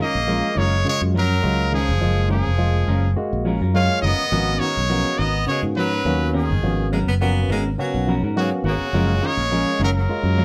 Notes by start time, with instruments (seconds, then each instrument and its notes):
0.00 clean electric guitar D#3 G#3 C#4 F4 A#4, tenor saxophone A#3, trumpet D#5
0.15 fingered electric bass A#1
0.27 clean electric guitar F3 G#3 C#4 F4 A#4, tine electric piano G#3 A#3 F4
0.55 fingered electric bass F#1, clean electric guitar D#3 G#3 C#4 F4 A#4, trumpet C#5
0.61 tenor saxophone G#3
0.85 clean electric guitar C#3, tine electric piano G#3 A#3 F4
0.89 tenor saxophone G#3, trumpet C#5
1.01 fingered electric bass F#2
1.14 clean electric guitar F3 C#4 A#4, tenor saxophone F#3, trumpet A#4, muted clean electric guitar stroke
1.42 fingered electric bass C#2, clean electric guitar F#3, tine electric piano G#3 A#3 F4
1.72 clean electric guitar D#3 G#3 C#4 A#4, trumpet G#4
1.76 tenor saxophone F3
1.89 fingered electric bass F#1
2.00 fingered electric bass F#1, clean electric guitar F3, tine electric piano G#3 A#3 F4
2.29 clean electric guitar D#3 G#3 C#4 A#4, tenor saxophone F3, trumpet G#4, muted clean electric guitar stroke
2.47 fingered electric bass F1
2.58 clean electric guitar F3, tine electric piano G#3 A#3 F4
2.88 fingered electric bass F#1, clean electric guitar G#3 C#4 F4 A#4
3.16 tine electric piano G#3 A#3 F#4, muted clean electric guitar stroke
3.33 fingered electric bass A#1
3.45 clean electric guitar F3 G#3 C#4 F4 A#4
3.61 fingered electric bass F#2, clean electric guitar C#4 F4 A#4
3.74 clean electric guitar F#3, tine electric piano G#3 A#3 F4, tenor saxophone C#4, trumpet F5
4.02 fingered electric bass F#1, clean electric guitar D#3 G#3 C#4 F4 A#4, tenor saxophone B3, trumpet D#5
4.32 fingered electric bass G#1, clean electric guitar F3 B3 C#4 F#4 A#4, tine electric piano A#3 B3 C#4 F#4
4.59 clean electric guitar D#3 B3 C#4 F#4 A#4, trumpet C#5
4.65 tenor saxophone G#3
4.77 fingered electric bass B1
4.90 clean electric guitar F3 B3 C#4 F#4 A#4, tine electric piano A#3 B3 C#4 F#4
5.17 fingered electric bass G#1, clean electric guitar D#3 B3 F#4 A#4, trumpet D#5
5.22 tenor saxophone B3
5.47 clean electric guitar C#3, tine electric piano A#3 B3 C#4 F#4, trumpet C#5
5.51 tenor saxophone G#3
5.63 fingered electric bass G#2
5.76 clean electric guitar F3 B3 C#4 F#4 A#4, tenor saxophone F#3, trumpet B4
5.93 clean electric guitar C#4 F#4 A#4
6.05 fingered electric bass D#2, clean electric guitar F#3, tine electric piano A#3 B3 C#4 F#4
6.33 clean electric guitar D#3 B3 C#4 A#4, tenor saxophone D#3, trumpet G#4, muted clean electric guitar stroke
6.51 fingered electric bass G#1
6.63 fingered electric bass G#1, clean electric guitar F3, tine electric piano A#3 B3 C#4 F#4
6.92 clean electric guitar F#3 B3 C#4 F#4 A#4, baritone saxophone G#3
7.07 fingered electric bass F#1, baritone saxophone B3
7.21 clean electric guitar F3 B3 C#4 F#4 A#4, tine electric piano A#3 B3 C#4 F#4, baritone saxophone B3
7.48 fingered electric bass G#1, clean electric guitar D#3 B3 C#4 F#4 A#4, baritone saxophone G#3
7.78 clean electric guitar C#3, baritone saxophone F#3, tine electric piano A#3 B3 C#4 F#4
7.94 fingered electric bass B1
8.08 clean electric guitar F3 B3 C#4 F#4 A#4
8.23 fingered electric bass G#2, clean electric guitar C#4 F#4 A#4
8.36 tenor saxophone C#3, clean electric guitar F#3, tine electric piano A#3 B3 C#4 F#4, trumpet F#4
8.64 fingered electric bass G#1, clean electric guitar D#3 B3 C#4 F#4 A#4, trumpet F#4
8.68 tenor saxophone C#3
8.93 fingered electric bass F#1, clean electric guitar F3 G#3 C#4 F4 A#4, tine electric piano G#3 A#3 F4
9.22 clean electric guitar D#3 G#3 C#4 F4 A#4
9.26 tenor saxophone G#3, trumpet C#5
9.37 fingered electric bass A#1
9.50 clean electric guitar F3 C#4 F4 A#4, tine electric piano G#3 A#3 C#4, muted clean electric guitar stroke
9.79 fingered electric bass F#1, clean electric guitar D#3 G#3 C#4 F4 A#4
9.84 tenor saxophone F#3, trumpet A#4
9.98 tenor saxophone F#3, trumpet A#4
10.09 tine electric piano G#3 A#3 F4, muted clean electric guitar stroke
10.23 fingered electric bass F#2
10.38 clean electric guitar F3 G#3 C#4 F4 A#4